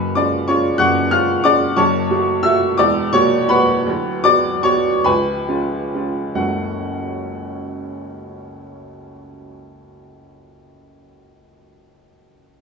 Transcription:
0.00 0.15 F#1 medium
0.00 0.12 F#2 medium
0.00 0.12 B4 medium
0.00 0.12 G#5 medium
0.00 0.16 B5 medium
0.15 0.45 G#3 medium
0.15 0.45 C#4 soft
0.15 0.45 F4 soft
0.15 0.46 D5 medium
0.15 0.47 D6 loud
0.48 0.77 G#3 medium
0.48 0.77 C#4 medium
0.48 0.77 F4 medium
0.48 0.78 C#5 medium
0.48 0.78 C#6 medium
0.78 1.10 F#1 medium
0.78 1.11 F#2 medium
0.78 1.09 F#5 loud
0.78 1.09 C#6 loud
0.78 1.11 F#6 loud
1.11 1.41 G#3 medium
1.11 1.41 C#4 medium
1.11 1.41 F4 medium
1.11 1.42 F5 medium
1.11 1.44 F6 loud
1.44 1.74 G#3 medium
1.44 1.74 C#4 medium
1.44 1.74 F4 medium
1.44 1.75 D5 medium
1.44 1.77 D6 loud
1.76 2.09 F#1 medium
1.76 2.09 F#2 medium
1.76 2.41 C#5 medium
1.76 2.41 A5 medium
1.76 2.44 C#6 loud
2.10 2.41 F#3 medium
2.10 2.41 A3 medium
2.10 2.41 F#4 medium
2.43 2.76 F#3 medium
2.43 2.75 A3 medium
2.43 2.76 F#4 medium
2.43 2.77 E5 medium
2.43 2.78 E6 loud
2.78 3.13 E1 medium
2.78 3.13 E2 medium
2.78 3.12 D5 medium
2.78 3.13 D6 loud
3.13 3.46 F#3 medium
3.13 3.46 A#3 medium
3.13 3.46 F#4 medium
3.13 3.47 C#5 loud
3.13 3.49 C#6 loud
3.49 3.83 F#3 medium
3.49 3.83 A#3 medium
3.49 3.83 F#4 medium
3.49 4.21 B4 medium
3.49 4.21 F#5 medium
3.49 4.25 B5 loud
3.86 4.24 D1 medium
3.86 4.24 D2 medium
4.24 4.60 F#3 medium
4.24 4.61 B3 medium
4.24 4.61 F#4 medium
4.24 4.62 D5 medium
4.24 4.64 D6 loud
4.63 5.01 F#3 medium
4.63 5.02 B3 medium
4.63 5.02 F#4 medium
4.63 5.03 C#5 medium
4.63 5.05 C#6 loud
5.04 5.47 C#1 medium
5.04 5.47 C#2 medium
5.04 5.46 B4 medium
5.04 5.46 G#5 medium
5.04 5.48 B5 loud
5.48 5.90 G#3 medium
5.48 5.91 C#4 soft
5.48 5.91 F4 medium
5.94 6.33 G#3 soft
5.94 6.34 C#4 soft
5.94 6.34 F4 medium
6.35 10.47 F#1 medium
6.35 10.47 C#2 medium
6.35 10.47 F#3 medium
6.35 10.47 A3 medium
6.35 10.48 C#4 medium
6.35 10.48 F#4 soft
6.35 10.47 F#5 medium

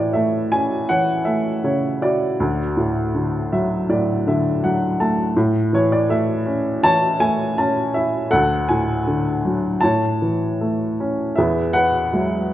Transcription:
0.00 2.35 A2 medium
0.00 0.89 E3 soft
0.00 0.90 C#5 medium
0.00 0.14 D5 medium
0.13 1.25 A3 soft
0.13 0.53 E5 medium
0.52 1.98 C#4 soft
0.52 0.90 G#5 medium
0.89 2.36 E3 soft
0.89 1.63 C#5 medium
0.89 1.28 F#5 medium
1.25 2.36 A3 soft
1.25 1.64 E5 medium
1.64 2.37 C#3 soft
1.64 2.03 C#5 medium
2.02 2.38 E4 soft
2.02 3.48 F#4 soft
2.02 3.47 D5 medium
2.40 5.31 D2 medium
2.77 3.88 A2 soft
3.15 4.26 D3 soft
3.53 4.62 F#3 medium
3.53 3.86 E5 medium
3.89 5.32 A2 soft
3.89 4.23 D5 medium
4.27 5.33 D3 soft
4.27 4.60 E5 medium
4.63 5.34 F#3 medium
4.63 4.97 F#5 medium
5.00 5.35 A3 soft
5.00 5.34 A5 medium
5.37 8.28 A2 medium
5.73 6.81 E3 soft
5.73 5.92 C#5 medium
5.92 6.08 D5 medium
6.09 7.18 A3 soft
6.09 6.85 E5 medium
6.46 7.57 C#4 soft
6.83 8.28 E3 soft
6.83 8.28 C#5 medium
6.83 7.21 A5 loud
7.20 8.28 A3 medium
7.20 7.58 G#5 medium
7.58 8.30 C#4 medium
7.58 7.92 A5 medium
7.94 8.31 E4 soft
7.94 8.32 E5 medium
8.31 9.79 D2 medium
8.31 9.78 A4 medium
8.31 8.66 F#5 medium
8.69 9.80 A2 soft
8.69 9.40 G#5 medium
9.07 9.81 D3 medium
9.45 9.82 F#3 soft
9.81 11.34 A2 medium
9.81 11.34 C#5 medium
9.81 10.94 A5 medium
10.22 11.34 E3 soft
10.61 11.35 A3 soft
11.00 11.37 C#4 soft
11.36 12.54 E2 medium
11.36 12.54 G#4 soft
11.36 11.74 B4 soft
11.36 11.75 E5 medium
11.73 12.54 B4 medium
11.73 12.46 F#5 medium
12.13 12.54 F#3 soft
12.13 12.54 G#3 soft
12.13 12.54 E4 soft

